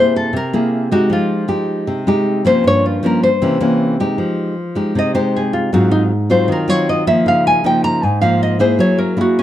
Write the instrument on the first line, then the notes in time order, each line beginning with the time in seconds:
nylon-string guitar
Already playing: C3 A#3 E4 G#4
0.00 C5
0.16 A4
0.33 C3 A#4
0.53 A#3 E4 G#4
0.91 G#3 D#4 F#4 G4
1.10 F3 F4
1.48 G#3 D#4 G4
1.87 C3
2.07 G#3 D#4 G4
2.45 F3 A#3 C#4 C5
2.64 G2 C#5
2.86 F4
3.03 F3 A#3 C#4 A#4
3.23 C5
3.42 C3 E3 A#3 C#4
3.61 E3 A#3 C#4
4.00 G#3 D#4 G4
4.18 F3
4.75 G#3 D#4 G4
4.95 C3 D#5
5.14 G#3 D#4 G4 C5
5.36 G#4
5.53 F4
5.73 G#2 F#3 C4 F4 F#4
5.91 D#4
6.30 F#3 C4 F4 C5
6.48 D#3
6.52 A#4
6.68 F#3 C4 F4 C#5
6.89 D#5
7.07 F3 A#3 D#4 E5
7.26 C#3 F5
7.47 G#5
7.64 F3 A#3 D#4 G5
7.84 A#5
8.03 G#2 G#5
8.21 F3 A#3 D#4 F5
8.43 D#5
8.59 A#3 E4 G#4 C5
8.79 F#3 C#5
8.98 A#4
9.17 A#3 E4 G#4
9.21 F#4
9.39 C#4